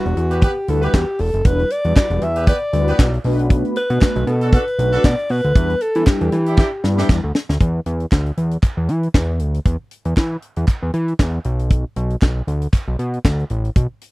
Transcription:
Already playing: G3 D4 E4 F#4 B4
0.06 E1, closed hi-hat
0.17 E2, closed hi-hat
0.31 B3 G4 B4, closed hi-hat
0.42 B3 G4 B4, kick, closed hi-hat
0.68 D2 G3 D4 E4 F#4 A4 B4, closed hi-hat
0.82 B3 G4 B4, closed hi-hat
0.94 E2 G4, kick, snare, clap
1.19 E1 A4, open hi-hat
1.34 F#1, closed hi-hat
1.45 E1 G3 D4 E4 F#4 B4, kick, closed hi-hat
1.59 closed hi-hat
1.70 D5, closed hi-hat
1.84 E2 G3 D4 E4 F#4 B4, closed hi-hat
1.96 D5, kick, snare, clap
2.10 E1, closed hi-hat
2.22 E2 E5, closed hi-hat
2.36 B3 G4 B4, closed hi-hat
2.47 B3 G4 B4 D5, kick, closed hi-hat
2.73 D2 G3 D4 E4 F#4 B4, closed hi-hat
2.87 B3 G4 B4, closed hi-hat
2.99 B1, kick, snare, clap
3.14 closed hi-hat
3.24 B1 A3 B3 D4 F#4 B4, open hi-hat
3.39 closed hi-hat
3.50 kick, closed hi-hat
3.65 closed hi-hat
3.76 B4, closed hi-hat
3.90 B2 A3 B3 D4 F#4 B4, closed hi-hat
4.02 kick, snare, clap
4.03 clap
4.16 B1, closed hi-hat
4.27 B2 A4, closed hi-hat
4.41 D4 F#4 A4, closed hi-hat
4.53 D4 F#4 A4 B4, kick, closed hi-hat
4.67 closed hi-hat
4.78 B1 A3 B3 D4 F#4 B4, closed hi-hat
4.93 D4 F#4 A4, closed hi-hat
5.04 B2 D5, kick, snare, clap
5.19 closed hi-hat
5.29 B2 B4, open hi-hat
5.44 D2, closed hi-hat
5.55 E2 G3 B3 D4 E4 B4, kick, closed hi-hat
5.70 closed hi-hat
5.81 A4, closed hi-hat
5.95 E3 G3 B3 D4 E4 A4, closed hi-hat
6.07 G4, kick, snare, clap
6.21 E2, closed hi-hat
6.32 E3, closed hi-hat
6.46 D4 E4 G4, closed hi-hat
6.58 D4 E4 G4, kick, snare, clap
6.83 G2 G3 B3 D4 E4 B4, snare
6.98 D4 E4 G4, snare
7.09 E2, kick, snare, clap
7.24 D2
7.35 snare
7.49 D2, snare
7.60 E2, kick, closed hi-hat
7.86 E2, closed hi-hat
8.00 closed hi-hat
8.12 D2, kick, snare, clap
8.13 clap
8.26 closed hi-hat
8.37 E2, closed hi-hat
8.51 closed hi-hat
8.63 kick, clap, closed hi-hat
8.77 E2
8.88 E3, closed hi-hat
9.03 closed hi-hat
9.14 E2, kick, snare, clap
9.39 D2, closed hi-hat
9.54 closed hi-hat
9.65 E2, kick, closed hi-hat
9.91 closed hi-hat
10.05 E2, closed hi-hat
10.17 E3, kick, snare, clap
10.42 closed hi-hat
10.56 E2, closed hi-hat
10.68 kick, clap, closed hi-hat
10.82 E2
10.94 E3, closed hi-hat
11.08 closed hi-hat
11.19 E2, kick, snare, clap
11.44 B1, closed hi-hat
11.59 closed hi-hat
11.70 kick, closed hi-hat
11.96 B1, closed hi-hat
12.10 closed hi-hat
12.22 B1, kick, snare, clap
12.24 clap
12.47 D2, closed hi-hat
12.62 closed hi-hat
12.73 kick, clap, closed hi-hat
12.88 B1
12.99 B2, closed hi-hat
13.14 closed hi-hat
13.25 D2, kick, snare, clap
13.39 closed hi-hat
13.50 A1, closed hi-hat
13.65 closed hi-hat
13.76 B1, kick, closed hi-hat
14.01 closed hi-hat

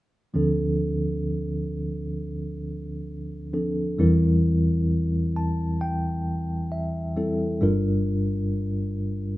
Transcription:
0.34 D2 D3 F3 C4 D4 A4
3.53 F3 C4 D4 A4
3.98 E2 E3 G3 C4 E4 A#4
5.36 A5
5.81 G5
6.72 E5
7.16 G3 C4 E4 A4
7.61 G1 G2 G3 D4 F4 A#4

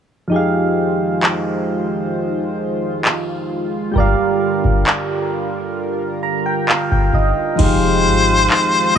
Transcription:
0.28 F3 D#4
0.32 D#3 G#3 F4 G4 G#4 C5
0.36 F5
1.23 clap
3.05 clap
3.92 D3 G3 G4 A#4, kick
3.96 A#4 D5
4.00 F5
4.64 kick
4.87 clap
6.23 A#5
6.46 G5
6.68 F5, clap
6.91 G5, kick
7.13 D#5, kick
7.56 F1 F3 D#4, kick, crash
7.60 D#3 G#3 C4 F4 G4 G#4 C5
7.64 F5
8.05 G#1
8.50 clap

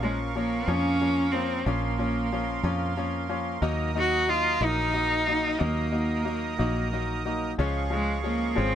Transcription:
Already playing: A#1 A#4 F5 C#6
0.02 F3 G#3 A#3 C#4 F4
0.35 F3 A#3 C#4 F4
0.67 F2 A#2 F3 A#3 C#4 F4
1.00 F3 A#3 C#4 F4
1.31 F3 A#3 C4 C#4 F4
1.36 A#3
1.66 A#1 A#2 F3 A#3 C#4 F4 C6
1.98 F3 A#3 C#4 F4
2.31 F3 A#3 C#4 F4
2.63 F2 A#2 F3 A#3 C#4 F4
2.96 F3 A#3 C#4 F4
3.29 F3 A#3 C#4 F4
3.61 D#2 D#3 F#3 A#3 D#4 F#4 D#5 A#5 D#6
3.94 F#3 A#3 D#4 F#4
3.99 F#4
4.27 D#3 F#3 A#3 D#4 F4
4.60 A#1 D#3 F#3 A#3 D#4 F#4
4.64 D#4
4.93 D#3 F#3 A#3 D#4 F#4
5.26 F#3 A#3 D#4 F#4
5.59 D#2 D#3 F#3 A#3 D#4 F#4
5.92 F#3 A#3 D#4 F#4
6.25 D#3 F#3 A#3 D#4 F#4
6.58 A#1 D#3 F#3 A#3 D#4 F#4
6.92 D#3 F#3 A#3 D#4 F#4
7.25 F#3 A#3 D#4 F#4
7.58 C#2 C#3 F3 G#3 C#4 F4 G#4 F5 C#6
7.90 F3 G#3 C#4 F4
7.94 G#3
8.24 F3 G#3 A#3 C#4 F4
8.55 G#1 C#3 F3 G#3 C4 C#4 F4

